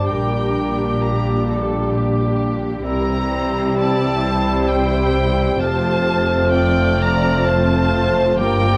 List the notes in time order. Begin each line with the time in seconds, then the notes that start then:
Already playing: D3 G3 D4 G4 D6
0.07 A#1 A#2 A#4 G5
1.02 G4 A#5
1.48 A4
1.96 G4
2.84 C2 C3 E3 G3 C4 E4 G4 A#4 A#5 E6
3.32 C5
3.76 D5 A5
4.22 C5
4.67 G5
5.58 F1 F2 F3 A3 C4 F4 C5 A5 F6
6.51 F4 D5 G5
6.97 A#5
7.45 C5 A5
8.38 G1 G2 F3 A#3 D4 G4 A#4 G5 D6